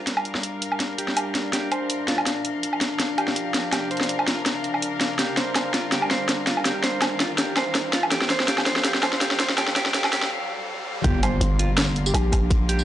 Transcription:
0.00 2.24 G3 medium
0.00 8.08 D4 medium
0.00 10.31 D4 medium
0.00 2.23 A#4 medium
0.00 8.08 F5 medium
0.00 riser medium
0.07 snare soft
0.07 closed hi-hat medium
0.17 low woodblock medium
0.25 closed hi-hat soft
0.35 snare soft
0.43 closed hi-hat medium
0.62 closed hi-hat medium
0.72 low woodblock medium
0.80 snare soft
0.80 closed hi-hat medium
0.98 1.51 G4 medium
0.98 closed hi-hat medium
1.08 snare soft
1.17 closed hi-hat medium
1.17 low woodblock medium
1.35 snare medium
1.35 closed hi-hat medium
1.53 1.70 G4 medium
1.53 snare medium
1.53 closed hi-hat medium
1.72 2.06 C5 medium
1.72 closed hi-hat soft
1.72 low woodblock medium
1.90 closed hi-hat medium
2.08 2.19 F4 medium
2.08 snare medium
2.08 closed hi-hat medium
2.18 low woodblock medium
2.26 5.16 F3 medium
2.26 8.08 A#4 medium
2.26 snare medium
2.26 closed hi-hat medium
2.45 closed hi-hat medium
2.63 closed hi-hat medium
2.73 low woodblock soft
2.81 snare medium
2.81 closed hi-hat medium
3.00 snare medium
3.00 closed hi-hat medium
3.18 3.71 G4 medium
3.18 closed hi-hat soft
3.18 low woodblock medium
3.28 snare medium
3.36 closed hi-hat medium
3.54 snare medium
3.54 closed hi-hat medium
3.73 3.89 G4 medium
3.73 snare medium
3.73 closed hi-hat medium
3.73 low woodblock soft
3.91 4.26 C5 medium
3.91 closed hi-hat soft
3.97 snare medium
3.97 closed hi-hat soft
4.03 closed hi-hat soft
4.09 closed hi-hat medium
4.19 low woodblock medium
4.27 4.39 F4 medium
4.27 snare medium
4.27 closed hi-hat medium
4.46 snare medium
4.46 closed hi-hat medium
4.64 closed hi-hat soft
4.74 low woodblock soft
4.82 closed hi-hat medium
5.01 snare medium
5.01 closed hi-hat medium
5.19 8.09 G3 medium
5.19 5.36 G4 medium
5.19 snare medium
5.19 closed hi-hat medium
5.37 5.72 C5 medium
5.37 snare medium
5.37 closed hi-hat medium
5.56 snare medium
5.56 closed hi-hat medium
5.56 low woodblock soft
5.74 5.85 F4 medium
5.74 snare medium
5.74 closed hi-hat medium
5.92 6.09 G4 medium
5.92 snare medium
5.92 closed hi-hat medium
6.02 low woodblock medium
6.10 6.45 C5 medium
6.10 snare medium
6.10 closed hi-hat soft
6.29 snare medium
6.29 closed hi-hat medium
6.47 6.58 F4 medium
6.47 snare medium
6.47 closed hi-hat medium
6.57 low woodblock medium
6.65 6.82 G4 medium
6.65 snare medium
6.65 closed hi-hat medium
6.83 7.18 C5 medium
6.83 snare medium
6.83 closed hi-hat medium
7.02 snare medium
7.02 closed hi-hat medium
7.02 low woodblock medium
7.20 7.31 F4 medium
7.20 snare medium
7.20 closed hi-hat medium
7.38 7.55 G4 medium
7.38 snare medium
7.38 closed hi-hat medium
7.56 7.92 C5 medium
7.56 snare medium
7.56 closed hi-hat soft
7.56 low woodblock medium
7.75 snare medium
7.75 closed hi-hat medium
7.93 8.04 F4 medium
7.93 snare medium
7.93 closed hi-hat medium
8.03 low woodblock medium
8.11 11.01 F3 medium
8.11 11.01 C4 medium
8.11 8.28 G4 medium
8.11 11.01 A4 medium
8.11 11.01 F5 medium
8.11 snare medium
8.11 closed hi-hat medium
8.22 snare medium
8.30 8.47 C5 medium
8.30 snare medium
8.30 closed hi-hat medium
8.40 snare medium
8.48 8.65 G4 medium
8.48 snare medium
8.48 closed hi-hat medium
8.58 snare medium
8.58 low woodblock medium
8.66 8.83 C5 medium
8.66 snare medium
8.66 closed hi-hat medium
8.76 snare medium
8.84 9.01 G4 medium
8.84 snare loud
8.84 closed hi-hat medium
8.94 snare medium
9.03 9.20 C5 medium
9.03 snare loud
9.03 closed hi-hat soft
9.03 low woodblock medium
9.13 snare medium
9.21 9.38 G4 medium
9.21 snare medium
9.21 closed hi-hat medium
9.31 snare medium
9.39 9.57 C5 medium
9.39 snare loud
9.39 closed hi-hat medium
9.50 snare medium
9.57 9.74 G4 medium
9.57 snare loud
9.57 closed hi-hat medium
9.57 low woodblock medium
9.68 snare medium
9.76 9.93 G4 medium
9.76 snare loud
9.76 closed hi-hat medium
9.86 snare medium
9.94 10.11 G4 medium
9.94 snare loud
9.94 closed hi-hat medium
10.04 snare medium
10.04 low woodblock medium
10.13 10.29 G4 medium
10.13 snare loud
10.13 closed hi-hat medium
10.23 snare medium
11.04 11.40 G1 medium
11.04 12.84 D3 medium
11.04 12.84 G3 medium
11.04 12.84 A#3 medium
11.04 12.84 D4 medium
11.04 12.84 F4 medium
11.04 11.21 G4 medium
11.04 kick loud
11.04 closed hi-hat medium
11.04 impact medium
11.23 11.58 C5 medium
11.23 closed hi-hat medium
11.23 low woodblock medium
11.41 12.13 G1 loud
11.41 closed hi-hat medium
11.59 11.70 F4 medium
11.59 closed hi-hat medium
11.78 snare loud
11.78 closed hi-hat medium
11.96 closed hi-hat soft
12.06 12.32 G4 medium
12.06 tambourine medium
12.14 12.84 A#1 medium
12.14 closed hi-hat medium
12.14 low woodblock medium
12.32 kick medium
12.32 closed hi-hat medium
12.32 low woodblock soft
12.51 kick loud
12.51 closed hi-hat medium
12.69 12.84 G4 medium
12.69 closed hi-hat medium
12.79 tambourine soft

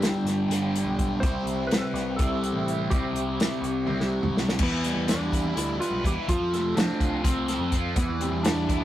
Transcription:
0.00 0.49 G2 medium
0.00 0.50 D3 medium
0.00 0.49 G3 medium
0.00 4.57 G3 medium
0.00 1.20 B3 medium
0.00 1.20 D4 medium
0.00 4.57 G4 medium
0.00 snare medium
0.00 closed hi-hat medium
0.24 0.48 G1 medium
0.24 snare soft
0.24 closed hi-hat medium
0.49 0.84 G1 medium
0.49 1.21 D3 medium
0.49 1.24 G3 medium
0.49 snare soft
0.49 closed hi-hat medium
0.54 1.23 G2 medium
0.76 closed hi-hat medium
0.85 1.20 B1 medium
0.99 kick medium
0.99 closed hi-hat medium
1.20 1.34 C2 medium
1.20 2.17 C3 medium
1.20 2.20 G3 medium
1.20 4.57 C4 medium
1.20 1.67 C5 medium
1.20 kick loud
1.20 closed hi-hat medium
1.25 2.19 C4 medium
1.25 4.58 E4 medium
1.44 1.68 C2 medium
1.44 closed hi-hat medium
1.67 1.77 B4 medium
1.71 snare loud
1.71 closed hi-hat medium
1.78 1.85 A4 medium
1.78 2.19 B4 medium
1.94 2.17 C2 loud
1.94 snare soft
1.94 closed hi-hat medium
2.16 2.53 C2 medium
2.16 2.88 C3 medium
2.16 2.63 A4 medium
2.16 kick loud
2.16 closed hi-hat medium
2.21 2.92 G3 medium
2.21 2.92 C4 medium
2.44 closed hi-hat medium
2.53 2.89 A1 medium
2.68 closed hi-hat medium
2.90 3.03 C2 medium
2.90 3.86 C3 medium
2.90 3.87 G3 medium
2.90 4.08 G4 loud
2.90 kick medium
2.90 closed hi-hat medium
2.94 3.85 C4 medium
3.13 3.37 C2 medium
3.13 closed hi-hat medium
3.40 snare loud
3.40 closed hi-hat medium
3.61 3.85 C2 medium
3.61 closed hi-hat medium
3.86 4.21 C2 medium
3.86 4.59 G3 medium
3.86 4.58 C4 medium
3.86 high tom medium
3.90 4.60 C3 medium
4.00 snare medium
4.22 4.57 B1 medium
4.22 mid tom medium
4.37 snare medium
4.49 snare medium
4.58 4.69 E2 medium
4.58 5.81 E3 medium
4.58 kick loud
4.58 crash loud
4.63 5.11 B3 medium
4.70 4.94 E2 medium
4.84 6.04 G3 medium
4.84 closed hi-hat medium
4.95 5.41 E2 medium
5.08 5.55 D4 medium
5.08 5.58 D4 medium
5.08 snare loud
5.08 closed hi-hat medium
5.32 6.03 E4 medium
5.32 kick medium
5.32 closed hi-hat medium
5.43 5.54 E2 medium
5.55 5.78 D2 medium
5.55 6.29 D4 medium
5.55 5.80 E4 medium
5.55 closed hi-hat medium
5.80 6.05 F4 loud
5.80 6.29 B4 medium
5.80 closed hi-hat medium
5.91 6.03 B1 medium
6.04 6.16 E2 medium
6.04 6.28 E4 medium
6.04 6.13 G4 loud
6.04 kick medium
6.04 closed hi-hat medium
6.28 6.39 F2 medium
6.28 7.48 F3 medium
6.28 6.73 F4 medium
6.28 kick medium
6.28 closed hi-hat medium
6.39 6.74 F2 medium
6.53 7.73 A3 medium
6.53 snare soft
6.53 closed hi-hat medium
6.76 6.87 F3 loud
6.76 7.23 C4 medium
6.76 7.24 D4 loud
6.76 snare loud
6.76 closed hi-hat medium
7.00 7.57 C2 medium
7.00 7.72 F4 medium
7.00 kick medium
7.00 closed hi-hat medium
7.24 7.75 C4 medium
7.24 7.97 C4 medium
7.24 kick medium
7.24 snare soft
7.24 closed hi-hat medium
7.48 7.97 A4 medium
7.48 snare soft
7.48 closed hi-hat medium
7.59 7.94 F2 medium
7.72 7.97 F4 medium
7.72 kick medium
7.72 closed hi-hat medium
7.96 8.08 E2 medium
7.96 8.84 E3 medium
7.96 8.21 B3 medium
7.96 8.84 E4 medium
7.96 8.84 G4 medium
7.96 8.84 B4 medium
7.96 8.84 D5 medium
7.96 kick loud
7.96 closed hi-hat medium
8.08 8.31 E2 medium
8.21 8.84 G3 medium
8.21 8.43 C4 medium
8.21 closed hi-hat medium
8.31 8.77 E2 medium
8.43 8.84 D4 medium
8.43 snare loud
8.43 closed hi-hat loud
8.69 8.84 E4 medium
8.69 kick medium
8.69 closed hi-hat medium
8.80 8.84 E2 medium

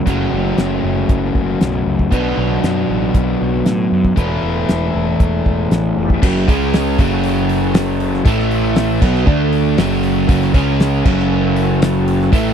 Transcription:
0.06 0.27 F#1 medium
0.06 2.11 F#2 medium
0.06 2.10 C#3 medium
0.06 2.10 F#3 medium
0.06 2.11 A3 medium
0.06 2.11 C#4 medium
0.06 2.12 F#4 medium
0.06 kick medium
0.06 closed hi-hat medium
0.32 0.52 F#1 medium
0.58 0.78 F#1 medium
0.58 snare medium
0.58 closed hi-hat soft
0.84 1.03 F#1 medium
1.09 1.29 F#1 medium
1.09 kick loud
1.09 closed hi-hat medium
1.35 1.55 F#1 medium
1.35 kick medium
1.61 1.81 B1 medium
1.61 snare loud
1.61 closed hi-hat medium
1.86 2.06 C#2 medium
1.99 kick medium
2.11 2.32 B1 medium
2.11 4.16 B2 medium
2.11 4.16 F#3 medium
2.11 4.16 B3 medium
2.11 4.17 D4 medium
2.11 4.17 F#4 medium
2.11 kick medium
2.11 closed hi-hat medium
2.38 2.57 B1 medium
2.64 2.84 F#2 medium
2.64 snare medium
2.64 closed hi-hat medium
2.89 3.09 A1 medium
3.15 3.35 B1 medium
3.15 kick medium
3.15 closed hi-hat medium
3.42 3.61 B1 medium
3.66 3.86 A2 medium
3.66 snare loud
3.66 closed hi-hat medium
3.92 4.12 F#2 medium
4.04 kick medium
4.16 4.37 E1 medium
4.16 6.20 E2 medium
4.16 6.21 B2 medium
4.16 6.20 E3 medium
4.16 6.21 A3 medium
4.16 6.21 E4 medium
4.16 6.21 A4 medium
4.16 6.21 B4 medium
4.16 kick medium
4.16 closed hi-hat medium
4.43 4.63 E1 medium
4.69 4.89 E1 medium
4.69 snare loud
4.69 closed hi-hat medium
4.95 5.15 E1 medium
5.20 5.40 E1 medium
5.20 kick loud
5.20 closed hi-hat medium
5.46 5.66 E1 medium
5.46 kick medium
5.71 5.91 A1 medium
5.71 snare loud
5.71 closed hi-hat medium
5.89 6.12 B3 medium
5.89 6.13 C4 medium
5.95 6.17 F1 medium
5.95 6.15 D4 medium
5.95 6.16 E4 medium
6.00 6.18 F4 medium
6.00 6.19 G4 medium
6.05 6.20 A4 medium
6.05 6.22 B4 medium
6.10 6.23 C5 medium
6.10 6.25 D5 medium
6.10 kick medium
6.16 6.26 E5 medium
6.16 6.27 F5 medium
6.22 6.47 F#1 medium
6.22 6.47 F#2 medium
6.22 6.46 C#3 medium
6.22 6.47 F#3 loud
6.22 kick loud
6.22 crash loud
6.36 snare soft
6.48 6.96 C#2 loud
6.48 6.98 C#3 medium
6.48 6.98 G#3 medium
6.48 6.99 C#4 medium
6.48 6.99 G#4 medium
6.48 6.97 C#5 medium
6.48 6.99 G#5 medium
6.48 kick loud
6.48 open hi-hat medium
6.74 snare loud
6.74 open hi-hat medium
6.98 8.22 F#1 medium
6.98 8.25 F#2 medium
6.98 8.24 C#3 loud
6.98 8.25 F#3 loud
6.98 8.25 F#4 medium
6.98 8.24 A4 medium
6.98 8.25 C#5 medium
6.98 8.24 A5 medium
6.98 kick loud
6.98 open hi-hat medium
7.24 open hi-hat medium
7.49 open hi-hat medium
7.75 snare loud
7.75 open hi-hat medium
8.00 open hi-hat medium
8.14 snare soft
8.25 8.98 A1 medium
8.25 9.01 A2 medium
8.25 9.01 E3 loud
8.25 9.01 A3 loud
8.25 9.01 A4 medium
8.25 9.01 E5 medium
8.25 9.01 A5 medium
8.25 kick loud
8.25 open hi-hat medium
8.39 snare soft
8.51 open hi-hat medium
8.76 snare loud
8.76 open hi-hat medium
9.01 9.26 B1 medium
9.01 9.26 B2 medium
9.01 9.26 F#3 medium
9.01 9.27 B3 medium
9.01 kick loud
9.01 crash loud
9.15 snare soft
9.26 9.75 D2 medium
9.26 9.77 D3 medium
9.26 9.77 A3 medium
9.26 9.78 D4 medium
9.26 9.77 A4 medium
9.26 9.78 D5 medium
9.26 9.77 A5 medium
9.26 kick loud
9.53 open hi-hat medium
9.78 10.25 F#1 medium
9.78 10.27 F#2 medium
9.78 10.28 C#3 medium
9.78 10.28 F#3 loud
9.78 10.54 F#4 medium
9.78 10.54 A4 medium
9.78 10.54 C#5 medium
9.78 10.54 A5 medium
9.78 snare loud
9.78 open hi-hat medium
10.03 open hi-hat medium
10.28 10.53 F#1 loud
10.28 10.54 F#2 medium
10.28 10.52 C#3 loud
10.28 10.54 F#3 loud
10.28 kick loud
10.28 open hi-hat medium
10.42 snare soft
10.54 11.02 C#2 loud
10.54 11.04 C#3 medium
10.54 11.04 G#3 loud
10.54 11.05 C#4 loud
10.54 11.05 G#4 medium
10.54 11.05 C#5 medium
10.54 11.05 G#5 medium
10.54 kick loud
10.54 open hi-hat medium
10.80 snare loud
10.80 open hi-hat medium
11.04 12.28 F#1 loud
11.04 12.31 F#2 medium
11.04 12.31 C#3 loud
11.04 12.31 F#3 medium
11.04 12.31 F#4 medium
11.04 12.31 A4 medium
11.04 12.31 C#5 medium
11.04 12.32 A5 medium
11.04 kick loud
11.04 crash medium
11.19 snare soft
11.56 open hi-hat medium
11.82 snare loud
11.82 open hi-hat medium
12.08 open hi-hat medium
12.21 snare soft
12.32 12.54 A1 medium
12.32 12.54 A2 loud
12.32 12.54 E3 loud
12.32 12.54 A3 loud
12.32 12.54 A4 medium
12.32 12.54 E5 medium
12.32 12.54 A5 medium
12.32 kick loud
12.32 open hi-hat medium

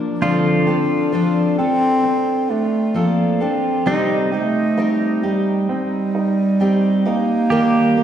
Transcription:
0.00 0.21 F3 soft
0.00 0.22 A#3 soft
0.00 0.22 D4 soft
0.00 1.55 D4 medium
0.00 0.22 A#4 soft
0.21 0.67 D3 medium
0.21 3.87 F3 medium
0.21 0.68 F3 medium
0.21 0.68 C4 medium
0.21 0.67 D4 medium
0.21 3.98 F4 medium
0.21 0.66 A4 medium
0.67 2.02 C4 medium
0.67 1.12 C4 soft
0.67 1.13 D4 soft
0.67 1.13 A4 medium
1.12 1.58 F3 medium
1.12 1.59 C4 medium
1.12 2.48 D4 medium
1.12 1.58 D4 medium
1.12 1.57 A4 medium
1.58 2.52 C4 loud
1.58 2.94 C4 soft
1.58 2.94 D4 soft
1.58 2.94 A4 medium
1.58 2.95 A4 medium
2.04 3.85 C4 medium
2.50 2.98 A3 loud
2.50 3.40 D4 medium
2.94 3.41 F3 medium
2.94 3.43 A#3 medium
2.94 3.41 C4 medium
2.94 3.40 D4 medium
2.94 3.96 A4 medium
2.94 3.39 A4 medium
3.40 4.05 C4 loud
3.40 3.85 C4 soft
3.40 3.96 D4 medium
3.40 3.87 D4 soft
3.40 3.86 A4 soft
3.86 4.32 C3 medium
3.86 4.32 G3 medium
3.86 4.30 C4 medium
3.86 4.32 C4 medium
3.86 4.32 D#4 medium
3.86 4.31 G4 medium
4.32 5.20 A3 loud
4.32 5.68 C4 medium
4.32 4.77 C4 soft
4.32 4.78 D#4 soft
4.32 4.78 G4 soft
4.77 5.23 G3 medium
4.77 5.24 C4 medium
4.77 6.13 D#4 medium
4.77 5.23 D#4 medium
4.77 5.22 G4 medium
5.23 5.67 G3 medium
5.23 6.60 C4 soft
5.23 6.60 D#4 soft
5.23 6.59 G4 medium
5.23 6.60 G4 medium
5.69 7.09 G3 loud
5.69 7.52 C4 medium
6.15 7.05 D#4 medium
6.60 7.06 G3 medium
6.60 7.06 C4 medium
6.60 7.05 D#4 medium
6.60 7.61 G4 medium
6.60 7.04 G4 medium
7.05 8.04 A#3 loud
7.05 7.51 C4 soft
7.05 7.51 D#4 medium
7.05 7.61 D#4 medium
7.05 7.51 G4 medium
7.51 7.97 D#3 medium
7.51 7.97 G3 medium
7.51 7.96 A#3 medium
7.51 7.97 A#3 medium
7.51 7.97 D#4 medium
7.51 7.95 G4 medium
7.97 8.04 A#3 medium
7.97 8.04 A#3 soft
7.97 8.04 D#4 soft
7.97 8.04 G4 medium

